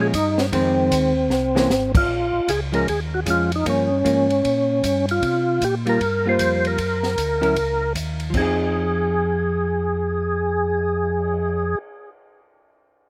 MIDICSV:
0, 0, Header, 1, 6, 480
1, 0, Start_track
1, 0, Key_signature, -4, "minor"
1, 0, Tempo, 390625
1, 650, Time_signature, 4, 2, 24, 8
1, 16090, End_track
2, 0, Start_track
2, 0, Title_t, "Tonewheel organ"
2, 0, Program_c, 0, 16
2, 17, Note_on_c, 0, 68, 87
2, 91, Note_off_c, 0, 68, 0
2, 183, Note_on_c, 0, 63, 88
2, 491, Note_off_c, 0, 63, 0
2, 493, Note_on_c, 0, 61, 80
2, 568, Note_off_c, 0, 61, 0
2, 674, Note_on_c, 0, 60, 76
2, 2357, Note_off_c, 0, 60, 0
2, 2423, Note_on_c, 0, 65, 79
2, 3065, Note_on_c, 0, 68, 82
2, 3082, Note_off_c, 0, 65, 0
2, 3199, Note_off_c, 0, 68, 0
2, 3376, Note_on_c, 0, 70, 78
2, 3528, Note_off_c, 0, 70, 0
2, 3555, Note_on_c, 0, 68, 79
2, 3686, Note_off_c, 0, 68, 0
2, 3862, Note_on_c, 0, 66, 76
2, 3934, Note_off_c, 0, 66, 0
2, 4060, Note_on_c, 0, 65, 80
2, 4320, Note_off_c, 0, 65, 0
2, 4369, Note_on_c, 0, 63, 80
2, 4506, Note_off_c, 0, 63, 0
2, 4542, Note_on_c, 0, 61, 77
2, 6212, Note_off_c, 0, 61, 0
2, 6282, Note_on_c, 0, 65, 98
2, 6932, Note_off_c, 0, 65, 0
2, 6937, Note_on_c, 0, 67, 89
2, 7064, Note_off_c, 0, 67, 0
2, 7242, Note_on_c, 0, 70, 87
2, 7713, Note_off_c, 0, 70, 0
2, 7730, Note_on_c, 0, 72, 112
2, 8196, Note_off_c, 0, 72, 0
2, 8196, Note_on_c, 0, 70, 85
2, 9743, Note_off_c, 0, 70, 0
2, 10290, Note_on_c, 0, 68, 78
2, 14481, Note_off_c, 0, 68, 0
2, 16090, End_track
3, 0, Start_track
3, 0, Title_t, "Hollow-body jazz guitar"
3, 0, Program_c, 1, 26
3, 0, Note_on_c, 1, 53, 66
3, 0, Note_on_c, 1, 56, 64
3, 0, Note_on_c, 1, 61, 70
3, 146, Note_off_c, 1, 53, 0
3, 151, Note_off_c, 1, 56, 0
3, 152, Note_off_c, 1, 61, 0
3, 644, Note_on_c, 1, 51, 68
3, 650, Note_on_c, 1, 56, 67
3, 656, Note_on_c, 1, 60, 80
3, 1371, Note_off_c, 1, 51, 0
3, 1374, Note_off_c, 1, 56, 0
3, 1377, Note_off_c, 1, 60, 0
3, 1905, Note_on_c, 1, 52, 69
3, 1917, Note_on_c, 1, 58, 69
3, 1921, Note_on_c, 1, 61, 76
3, 2067, Note_off_c, 1, 52, 0
3, 2073, Note_off_c, 1, 58, 0
3, 2075, Note_off_c, 1, 61, 0
3, 3344, Note_on_c, 1, 53, 67
3, 3352, Note_on_c, 1, 56, 74
3, 3362, Note_on_c, 1, 61, 72
3, 3506, Note_off_c, 1, 53, 0
3, 3510, Note_off_c, 1, 56, 0
3, 3515, Note_off_c, 1, 61, 0
3, 4004, Note_on_c, 1, 53, 51
3, 4016, Note_on_c, 1, 56, 52
3, 4020, Note_on_c, 1, 61, 54
3, 4282, Note_off_c, 1, 53, 0
3, 4287, Note_off_c, 1, 56, 0
3, 4289, Note_off_c, 1, 61, 0
3, 4494, Note_on_c, 1, 53, 51
3, 4498, Note_on_c, 1, 58, 53
3, 4502, Note_on_c, 1, 61, 57
3, 4767, Note_off_c, 1, 53, 0
3, 4769, Note_off_c, 1, 58, 0
3, 4771, Note_off_c, 1, 61, 0
3, 4970, Note_on_c, 1, 53, 46
3, 4974, Note_on_c, 1, 58, 55
3, 4985, Note_on_c, 1, 61, 52
3, 5244, Note_off_c, 1, 53, 0
3, 5246, Note_off_c, 1, 58, 0
3, 5252, Note_off_c, 1, 61, 0
3, 7196, Note_on_c, 1, 55, 60
3, 7207, Note_on_c, 1, 58, 61
3, 7212, Note_on_c, 1, 65, 71
3, 7353, Note_off_c, 1, 55, 0
3, 7358, Note_off_c, 1, 58, 0
3, 7361, Note_off_c, 1, 65, 0
3, 7684, Note_on_c, 1, 55, 53
3, 7695, Note_on_c, 1, 58, 64
3, 7707, Note_on_c, 1, 65, 64
3, 8300, Note_off_c, 1, 55, 0
3, 8305, Note_off_c, 1, 58, 0
3, 8311, Note_off_c, 1, 65, 0
3, 9108, Note_on_c, 1, 54, 60
3, 9109, Note_on_c, 1, 61, 60
3, 9114, Note_on_c, 1, 64, 62
3, 9123, Note_on_c, 1, 70, 64
3, 9269, Note_off_c, 1, 54, 0
3, 9270, Note_off_c, 1, 61, 0
3, 9272, Note_off_c, 1, 64, 0
3, 9277, Note_off_c, 1, 70, 0
3, 10199, Note_on_c, 1, 53, 57
3, 10258, Note_on_c, 1, 60, 53
3, 10303, Note_on_c, 1, 63, 63
3, 10347, Note_on_c, 1, 68, 60
3, 14440, Note_off_c, 1, 53, 0
3, 14499, Note_off_c, 1, 60, 0
3, 14544, Note_off_c, 1, 63, 0
3, 14588, Note_off_c, 1, 68, 0
3, 16090, End_track
4, 0, Start_track
4, 0, Title_t, "Tonewheel organ"
4, 0, Program_c, 2, 16
4, 0, Note_on_c, 2, 46, 87
4, 156, Note_off_c, 2, 46, 0
4, 162, Note_on_c, 2, 43, 84
4, 631, Note_off_c, 2, 43, 0
4, 646, Note_on_c, 2, 41, 78
4, 1113, Note_off_c, 2, 41, 0
4, 1121, Note_on_c, 2, 39, 90
4, 1585, Note_on_c, 2, 36, 81
4, 1591, Note_off_c, 2, 39, 0
4, 2062, Note_off_c, 2, 36, 0
4, 2072, Note_on_c, 2, 32, 90
4, 2546, Note_off_c, 2, 32, 0
4, 2561, Note_on_c, 2, 34, 77
4, 2849, Note_off_c, 2, 34, 0
4, 2864, Note_on_c, 2, 34, 37
4, 2954, Note_off_c, 2, 34, 0
4, 3043, Note_on_c, 2, 37, 85
4, 3511, Note_off_c, 2, 37, 0
4, 3524, Note_on_c, 2, 39, 82
4, 3992, Note_off_c, 2, 39, 0
4, 4007, Note_on_c, 2, 41, 85
4, 4474, Note_off_c, 2, 41, 0
4, 4493, Note_on_c, 2, 43, 76
4, 4957, Note_off_c, 2, 43, 0
4, 4976, Note_on_c, 2, 44, 86
4, 5439, Note_off_c, 2, 44, 0
4, 5456, Note_on_c, 2, 46, 77
4, 5919, Note_off_c, 2, 46, 0
4, 5940, Note_on_c, 2, 43, 87
4, 6401, Note_off_c, 2, 43, 0
4, 6416, Note_on_c, 2, 48, 77
4, 6879, Note_off_c, 2, 48, 0
4, 6893, Note_on_c, 2, 46, 85
4, 7357, Note_off_c, 2, 46, 0
4, 7377, Note_on_c, 2, 43, 84
4, 7840, Note_off_c, 2, 43, 0
4, 7854, Note_on_c, 2, 41, 81
4, 8318, Note_off_c, 2, 41, 0
4, 8330, Note_on_c, 2, 42, 78
4, 8796, Note_off_c, 2, 42, 0
4, 8817, Note_on_c, 2, 38, 81
4, 9280, Note_off_c, 2, 38, 0
4, 9292, Note_on_c, 2, 37, 77
4, 9757, Note_off_c, 2, 37, 0
4, 9773, Note_on_c, 2, 39, 83
4, 10238, Note_off_c, 2, 39, 0
4, 10248, Note_on_c, 2, 41, 78
4, 14440, Note_off_c, 2, 41, 0
4, 16090, End_track
5, 0, Start_track
5, 0, Title_t, "Cymbal swell"
5, 10549, Note_on_c, 9, 59, 42
5, 13983, Note_off_c, 9, 59, 0
5, 16090, End_track
6, 0, Start_track
6, 0, Title_t, "Drums"
6, 166, Note_on_c, 9, 36, 25
6, 167, Note_on_c, 9, 44, 60
6, 167, Note_on_c, 9, 51, 68
6, 289, Note_off_c, 9, 36, 0
6, 290, Note_off_c, 9, 44, 0
6, 290, Note_off_c, 9, 51, 0
6, 467, Note_on_c, 9, 38, 57
6, 590, Note_off_c, 9, 38, 0
6, 644, Note_on_c, 9, 36, 22
6, 648, Note_on_c, 9, 51, 59
6, 767, Note_off_c, 9, 36, 0
6, 771, Note_off_c, 9, 51, 0
6, 1123, Note_on_c, 9, 36, 24
6, 1126, Note_on_c, 9, 44, 54
6, 1126, Note_on_c, 9, 51, 67
6, 1246, Note_off_c, 9, 36, 0
6, 1249, Note_off_c, 9, 44, 0
6, 1249, Note_off_c, 9, 51, 0
6, 1601, Note_on_c, 9, 38, 47
6, 1724, Note_off_c, 9, 38, 0
6, 1922, Note_on_c, 9, 38, 69
6, 2045, Note_off_c, 9, 38, 0
6, 2092, Note_on_c, 9, 38, 61
6, 2094, Note_on_c, 9, 44, 52
6, 2215, Note_off_c, 9, 38, 0
6, 2217, Note_off_c, 9, 44, 0
6, 2391, Note_on_c, 9, 36, 85
6, 2394, Note_on_c, 9, 49, 76
6, 2514, Note_off_c, 9, 36, 0
6, 2517, Note_off_c, 9, 49, 0
6, 3047, Note_on_c, 9, 36, 24
6, 3053, Note_on_c, 9, 44, 61
6, 3053, Note_on_c, 9, 51, 67
6, 3170, Note_off_c, 9, 36, 0
6, 3175, Note_off_c, 9, 44, 0
6, 3175, Note_off_c, 9, 51, 0
6, 3361, Note_on_c, 9, 51, 41
6, 3483, Note_off_c, 9, 51, 0
6, 3529, Note_on_c, 9, 36, 25
6, 3539, Note_on_c, 9, 51, 53
6, 3652, Note_off_c, 9, 36, 0
6, 3662, Note_off_c, 9, 51, 0
6, 4010, Note_on_c, 9, 36, 22
6, 4010, Note_on_c, 9, 44, 57
6, 4010, Note_on_c, 9, 51, 61
6, 4133, Note_off_c, 9, 36, 0
6, 4133, Note_off_c, 9, 44, 0
6, 4133, Note_off_c, 9, 51, 0
6, 4324, Note_on_c, 9, 51, 46
6, 4446, Note_off_c, 9, 51, 0
6, 4494, Note_on_c, 9, 36, 18
6, 4498, Note_on_c, 9, 51, 59
6, 4617, Note_off_c, 9, 36, 0
6, 4621, Note_off_c, 9, 51, 0
6, 4977, Note_on_c, 9, 36, 20
6, 4983, Note_on_c, 9, 44, 47
6, 4983, Note_on_c, 9, 51, 58
6, 5100, Note_off_c, 9, 36, 0
6, 5106, Note_off_c, 9, 44, 0
6, 5106, Note_off_c, 9, 51, 0
6, 5288, Note_on_c, 9, 51, 40
6, 5411, Note_off_c, 9, 51, 0
6, 5458, Note_on_c, 9, 36, 20
6, 5464, Note_on_c, 9, 51, 55
6, 5581, Note_off_c, 9, 36, 0
6, 5587, Note_off_c, 9, 51, 0
6, 5938, Note_on_c, 9, 36, 26
6, 5943, Note_on_c, 9, 44, 56
6, 5943, Note_on_c, 9, 51, 63
6, 6060, Note_off_c, 9, 36, 0
6, 6066, Note_off_c, 9, 44, 0
6, 6066, Note_off_c, 9, 51, 0
6, 6249, Note_on_c, 9, 51, 43
6, 6372, Note_off_c, 9, 51, 0
6, 6419, Note_on_c, 9, 36, 26
6, 6422, Note_on_c, 9, 51, 55
6, 6541, Note_off_c, 9, 36, 0
6, 6545, Note_off_c, 9, 51, 0
6, 6898, Note_on_c, 9, 36, 22
6, 6900, Note_on_c, 9, 44, 50
6, 6900, Note_on_c, 9, 51, 58
6, 7021, Note_off_c, 9, 36, 0
6, 7023, Note_off_c, 9, 44, 0
6, 7023, Note_off_c, 9, 51, 0
6, 7209, Note_on_c, 9, 51, 39
6, 7331, Note_off_c, 9, 51, 0
6, 7376, Note_on_c, 9, 36, 18
6, 7383, Note_on_c, 9, 51, 54
6, 7499, Note_off_c, 9, 36, 0
6, 7505, Note_off_c, 9, 51, 0
6, 7853, Note_on_c, 9, 44, 58
6, 7853, Note_on_c, 9, 51, 62
6, 7855, Note_on_c, 9, 36, 18
6, 7976, Note_off_c, 9, 44, 0
6, 7976, Note_off_c, 9, 51, 0
6, 7978, Note_off_c, 9, 36, 0
6, 8167, Note_on_c, 9, 51, 42
6, 8290, Note_off_c, 9, 51, 0
6, 8334, Note_on_c, 9, 36, 25
6, 8335, Note_on_c, 9, 51, 55
6, 8457, Note_off_c, 9, 36, 0
6, 8458, Note_off_c, 9, 51, 0
6, 8641, Note_on_c, 9, 38, 43
6, 8764, Note_off_c, 9, 38, 0
6, 8816, Note_on_c, 9, 36, 19
6, 8819, Note_on_c, 9, 44, 52
6, 8819, Note_on_c, 9, 51, 58
6, 8938, Note_off_c, 9, 36, 0
6, 8942, Note_off_c, 9, 44, 0
6, 8942, Note_off_c, 9, 51, 0
6, 9129, Note_on_c, 9, 51, 43
6, 9251, Note_off_c, 9, 51, 0
6, 9293, Note_on_c, 9, 36, 20
6, 9293, Note_on_c, 9, 51, 55
6, 9416, Note_off_c, 9, 36, 0
6, 9416, Note_off_c, 9, 51, 0
6, 9770, Note_on_c, 9, 36, 21
6, 9774, Note_on_c, 9, 44, 58
6, 9774, Note_on_c, 9, 51, 61
6, 9893, Note_off_c, 9, 36, 0
6, 9897, Note_off_c, 9, 44, 0
6, 9897, Note_off_c, 9, 51, 0
6, 10072, Note_on_c, 9, 51, 43
6, 10195, Note_off_c, 9, 51, 0
6, 10244, Note_on_c, 9, 49, 55
6, 10248, Note_on_c, 9, 36, 53
6, 10367, Note_off_c, 9, 49, 0
6, 10371, Note_off_c, 9, 36, 0
6, 16090, End_track
0, 0, End_of_file